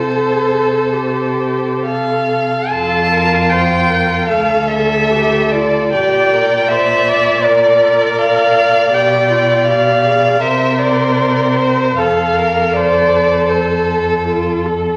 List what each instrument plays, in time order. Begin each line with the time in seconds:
Already playing: cello C3, violin A4 C5
0.08 viola A4
0.93 viola G4
1.85 viola A4, violin F5
2.70 cello F2, violin F4 A5, viola A4
3.12 viola A#4
3.50 viola C5, violin G5
3.90 viola A#4
4.28 cello D2, violin A4 F5, viola A4
4.67 violin E5
5.10 viola G4
5.52 viola F4, violin D5
5.93 cello A#2, viola G4, violin D5 G5
6.34 viola A#4
6.68 viola C5, violin E5
7.08 viola D5
7.44 viola A#4, violin D5
8.19 violin F5
8.93 cello B2, viola G4, violin G5
9.30 viola F4
9.67 viola G4, violin F5
10.05 viola G#4
10.41 cello C3, violin A#4 E5, viola C5
10.78 violin D5
11.56 violin C5
11.97 cello F2, viola A4, violin A4 F5
12.37 viola A#4
12.74 viola C5, violin D5
13.50 viola A4, violin C5
14.28 viola F4
14.66 viola A4